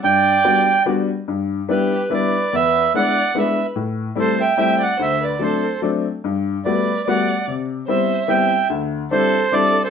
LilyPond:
<<
  \new Staff \with { instrumentName = "Accordion" } { \time 3/4 \key g \major \tempo 4 = 145 g''2 r4 | r4 b'4 d''4 | e''4 fis''4 e''8. r16 | r4 c''8 g''8 g''8 fis''8 |
e''8 d''8 c''4 r4 | r4 d''4 fis''4 | r4 e''4 g''4 | r4 c''4 d''8. c''16 | }
  \new Staff \with { instrumentName = "Violin" } { \time 3/4 \key g \major d''2 r4 | r4 g'4 b'4 | b'4 d''4 b'8. r16 | r4 a'8 e''8 e''8 d''8 |
c''8 b'8 a'4 r4 | r4 b'4 d''4 | r4 c''4 e''4 | r4 a'4 a'8. a'16 | }
  \new Staff \with { instrumentName = "Upright piano" } { \time 3/4 \key g \major g,4 <g b d' fis'>8 r8 <g b d' fis'>8 r8 | g,4 <g b d' e'>8 r8 <g b d' e'>8 r8 | e,4 <gis b d' e'>8 r8 <gis b d' e'>8 r8 | a,4 <g a c' e'>8 r8 <g a c' e'>8 r8 |
d,4 <fis a c' d'>8 r8 <fis a c' d'>8 r8 | g,4 <g a b fis'>8 r8 <g a b fis'>8 r8 | c4 <g b c' e'>8 r8 <g b c' e'>8 r8 | d,4 <g c' d' e'>8 r8 <g c' d' e'>8 r8 | }
>>